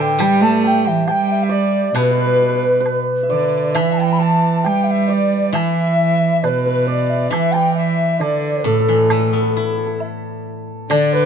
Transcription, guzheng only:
Already playing: A2
0.19 G3
1.95 B2
3.75 E3
5.53 E3
7.30 E3
8.64 A2
8.88 E3
9.11 A3
9.33 B3
9.57 E4
10.90 D3

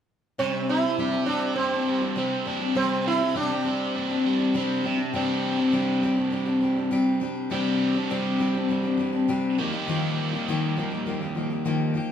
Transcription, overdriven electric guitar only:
0.40 C3
0.70 C4
1.00 G4
1.29 C4
1.59 D4
1.89 G3
2.18 C4
2.47 D4
2.78 C3
3.06 C4
3.37 G4
3.67 C4
3.96 D4
4.26 G3
4.56 C4
4.86 C3
5.15 C3 G3 C4 D4 G4
7.51 C3 G3 C4 D4 G4
9.59 D#3 G3 A#3 D#4 G4

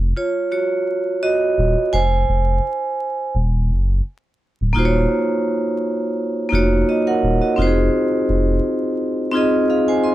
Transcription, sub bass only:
Already playing: F1
1.58 D#1
1.93 F1
2.29 F1
3.35 D#1
3.70 F#1
4.61 D1
4.76 D#1
6.52 F1
7.23 D#1
7.58 F1
8.29 F1

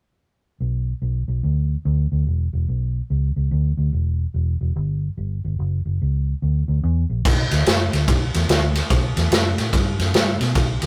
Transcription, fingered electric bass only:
0.60 B1
1.02 B1
1.28 B1
1.43 D2
1.85 D2
2.12 D2
2.27 E1
2.53 E1
2.68 B1
3.10 C#2
3.36 C#2
3.51 D2
3.77 D2
3.93 E1
4.34 E1
4.61 E1
4.76 G1
5.17 G1
5.45 G1
5.59 F#1
5.85 F#1
6.02 C#2
6.42 D2
6.68 D2
6.83 E2
7.10 A#1
7.25 B1
7.51 D2
7.67 F#2
7.93 D2
8.08 B1
8.34 E2
8.49 D2
8.90 B1
9.16 E2
9.31 F#2
9.58 A2
9.73 G2
9.99 F#2
10.14 G2
10.40 B2
10.55 B1
10.82 D2

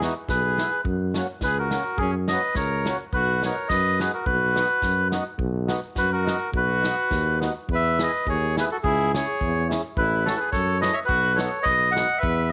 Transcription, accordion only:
0.02 B3 E4 G#4
0.58 B3 E4 G#4
1.15 A#3 C#4 F#4
1.72 A#3 C#4 F#4
2.30 A#3 C#4 F#4
2.86 A#3 C#4 F#4
3.44 B3 D#4 F#4
4.00 B3 D#4 F#4
4.55 B3 D#4 F#4
5.11 B3 D#4 F#4
5.67 B3 D#4 F#4
6.24 B3 D#4 F#4
6.82 B3 D#4 F#4
7.39 B3 D#4 F#4
7.99 B3 E4 G#4
8.57 B3 E4 G#4
9.14 C#4 E4 G#4
9.69 C#4 E4 G#4
10.26 C#4 E4 A4
10.81 C#4 E4 A4
11.37 B3 D#4 F#4
11.94 B3 D#4 F#4

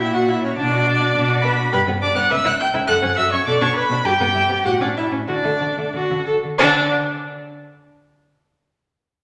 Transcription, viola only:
0.00 E4
0.15 F#4
0.30 E4
0.44 C#4
0.59 D4
1.44 B4
1.73 B4
2.03 D5
2.18 F#5
2.31 E5
2.46 F#5
2.60 G5
2.89 F#5
3.17 E5
3.32 C#5
3.47 D5
3.62 C#5
3.77 B4
4.06 G4
4.66 F#4
4.81 D4
4.98 E4
5.28 D4
6.58 D4

